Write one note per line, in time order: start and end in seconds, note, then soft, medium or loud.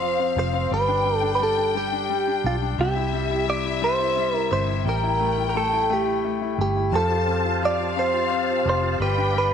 0.00 0.32 F1 medium
0.00 0.02 F3 medium
0.00 0.35 F3 medium
0.00 0.19 C4 medium
0.00 0.38 C5 medium
0.00 0.68 F5 loud
0.19 0.52 C4 soft
0.36 0.69 F1 loud
0.36 0.70 F3 medium
0.36 0.73 C5 loud
0.54 0.71 C4 medium
0.70 2.40 G1 loud
0.70 1.04 G3 medium
0.70 1.17 B4 loud
0.70 2.78 G5 loud
0.88 1.21 D4 medium
1.05 1.38 G3 medium
1.17 1.31 A4 loud
1.22 1.56 D4 medium
1.35 1.41 B4 medium
1.39 1.73 G3 medium
1.39 1.74 A4 loud
1.57 1.91 D4 soft
1.75 2.08 G3 medium
1.75 2.41 G4 medium
1.92 2.26 D4 soft
2.10 2.43 G3 medium
2.27 2.60 D4 medium
2.44 2.77 B1 loud
2.44 2.78 G3 medium
2.44 2.56 F4 loud
2.62 2.78 D4 medium
2.78 4.47 C2 loud
2.78 3.46 C3 medium
2.78 3.45 G4 medium
2.78 4.86 E5 loud
2.96 3.29 E4 medium
3.13 3.80 G3 medium
3.30 3.63 E4 medium
3.48 4.49 C3 medium
3.48 3.81 D5 loud
3.65 3.98 E4 medium
3.82 4.15 G3 medium
3.82 4.37 C5 loud
3.99 4.32 E4 medium
4.17 4.84 G3 medium
4.34 4.66 E4 medium
4.34 4.52 A#4 loud
4.51 4.84 G1 medium
4.51 4.84 C3 medium
4.51 4.84 C5 loud
4.68 4.85 E4 medium
4.86 6.54 A1 loud
4.86 6.89 G3 medium
4.86 5.48 A#4 loud
4.86 6.54 G5 loud
5.03 5.36 E4 medium
5.20 5.53 A3 medium
5.38 5.71 E4 soft
5.49 5.56 A#4 medium
5.55 5.88 A3 medium
5.55 5.92 A4 loud
5.73 6.06 E4 soft
5.90 6.23 A3 medium
5.90 6.60 G4 medium
6.07 6.40 E4 medium
6.24 6.57 A3 medium
6.41 6.74 E4 soft
6.58 6.91 G1 medium
6.58 6.92 A3 medium
6.58 6.96 G4 medium
6.76 6.93 E4 soft
6.92 8.61 F2 loud
6.92 7.61 F3 medium
6.92 9.54 G4 medium
6.92 7.65 A4 loud
6.92 8.99 C5 medium
6.92 9.54 F5 medium
6.92 7.58 A5 loud
6.92 8.99 A5 medium
7.10 7.44 F4 medium
7.27 7.95 C4 medium
7.45 7.78 F4 medium
7.62 8.64 F3 medium
7.62 7.96 D5 loud
7.62 9.00 F5 loud
7.79 8.12 F4 medium
7.96 8.29 C4 medium
7.96 8.68 C5 medium
8.14 8.47 F4 medium
8.31 8.98 C4 medium
8.49 8.81 F4 medium
8.65 8.98 F1 medium
8.65 8.99 F3 medium
8.69 9.02 C5 medium
8.82 9.00 F4 medium
9.00 9.54 G1 loud
9.00 9.33 G3 medium
9.00 9.33 B4 loud
9.00 9.54 D5 medium
9.00 9.54 G5 loud
9.00 9.54 B5 medium
9.18 9.51 D4 medium
9.35 9.54 G3 medium
9.35 9.54 B4 loud